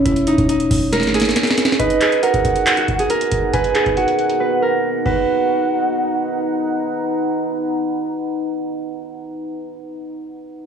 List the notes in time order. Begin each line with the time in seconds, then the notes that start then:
Already playing: C#4
0.05 E1 E4, kick, closed hi-hat
0.16 closed hi-hat
0.27 D#4, closed hi-hat
0.38 E1, kick, closed hi-hat
0.49 D#4, closed hi-hat
0.60 closed hi-hat
0.71 E1, kick, open hi-hat
0.92 A#4, snare, closed hi-hat
1.00 G#1, snare, closed hi-hat
1.07 snare
1.14 G#4, snare, closed hi-hat
1.20 snare, closed hi-hat
1.25 snare, closed hi-hat
1.31 closed hi-hat
1.36 snare, closed hi-hat
1.43 snare, closed hi-hat
1.51 snare
1.58 snare, closed hi-hat
1.65 snare
1.72 snare
1.79 B3 D#4 A#4 B4 D#5 F#5, kick, closed hi-hat
1.90 closed hi-hat
2.01 G#4, clap, closed hi-hat
2.12 closed hi-hat
2.23 A#4 F#5, closed hi-hat
2.34 kick, closed hi-hat
2.45 kick, closed hi-hat
2.56 closed hi-hat
2.67 clap, closed hi-hat
2.77 F#4, closed hi-hat
2.88 kick, closed hi-hat
2.99 G#4, closed hi-hat
3.10 A#4, closed hi-hat
3.21 closed hi-hat
3.32 kick, closed hi-hat
3.53 B4 G#5, kick, closed hi-hat
3.64 closed hi-hat
3.75 G#4, clap, closed hi-hat
3.86 kick, closed hi-hat
3.97 F#4 F#5, closed hi-hat
4.08 closed hi-hat
4.19 closed hi-hat
4.30 closed hi-hat
4.40 B4
4.62 A#4
5.06 D#4 B4 F#5 A#5, kick, crash